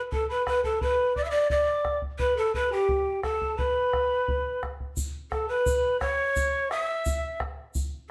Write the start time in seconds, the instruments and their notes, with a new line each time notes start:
0.12 pan flute A4, quena A5, bombo low
0.29 pan flute B4, quena B5
0.46 pan flute B4, quena B5, bombo rim, bombo low
0.64 pan flute A4, quena A5, bombo low
0.81 pan flute B4, quena B5, bombo low
1.16 pan flute D5, quena D6, bombo low
1.23 pan flute E5, quena E6
1.29 pan flute D5, quena D6
1.50 pan flute D5, quena D6, bombo low
1.85 bombo rim, bombo low
2.02 bombo low
2.19 pan flute B4, quena B5, bombo low
2.37 pan flute A4, quena A5
2.54 pan flute B4, quena B5, bombo low
2.72 pan flute G4, quena G5
2.89 bombo low
3.23 pan flute A4, quena A5, bombo rim, bombo low
3.41 bombo low
3.57 pan flute B4, quena B5, bombo low
3.93 bombo rim, bombo low
4.28 bombo low
4.63 bombo rim, bombo low
4.80 bombo low
4.97 bombo low, shaker
5.31 pan flute A4, quena A5, bombo rim, bombo low
5.48 pan flute B4, quena B5
5.66 bombo low, shaker
6.00 pan flute C#5, quena C#6, bombo rim, bombo low
6.36 bombo low, shaker
6.71 pan flute E5, quena D#6, bombo rim
6.84 quena E6
7.05 bombo low, shaker
7.40 bombo rim, bombo low
7.75 bombo low, shaker